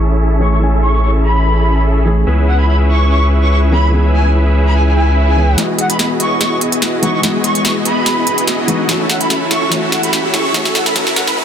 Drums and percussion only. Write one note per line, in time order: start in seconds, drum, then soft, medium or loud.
5.58 snare soft
5.58 closed hi-hat medium
5.79 closed hi-hat medium
5.90 closed hi-hat medium
5.99 snare medium
5.99 closed hi-hat medium
6.20 closed hi-hat medium
6.41 snare soft
6.41 closed hi-hat medium
6.61 closed hi-hat medium
6.72 closed hi-hat medium
6.82 snare medium
6.82 closed hi-hat medium
7.03 closed hi-hat medium
7.23 snare medium
7.23 closed hi-hat medium
7.44 closed hi-hat medium
7.55 closed hi-hat medium
7.65 snare medium
7.65 closed hi-hat medium
7.85 closed hi-hat medium
8.06 snare medium
8.06 closed hi-hat medium
8.27 closed hi-hat medium
8.38 closed hi-hat medium
8.47 snare medium
8.47 closed hi-hat medium
8.68 closed hi-hat medium
8.89 snare medium
8.89 closed hi-hat medium
9.10 snare medium
9.10 closed hi-hat medium
9.21 closed hi-hat medium
9.30 snare medium
9.30 closed hi-hat medium
9.51 snare medium
9.51 closed hi-hat medium
9.72 snare medium
9.72 closed hi-hat medium
9.92 snare medium
9.92 closed hi-hat medium
10.03 closed hi-hat medium
10.13 snare medium
10.13 closed hi-hat medium
10.34 snare medium
10.34 closed hi-hat medium
10.54 snare medium
10.54 closed hi-hat medium
10.65 snare medium
10.75 snare medium
10.75 closed hi-hat medium
10.86 snare medium
10.86 closed hi-hat medium
10.96 snare loud
10.96 closed hi-hat medium
11.07 snare medium
11.16 snare loud
11.16 closed hi-hat medium
11.27 snare medium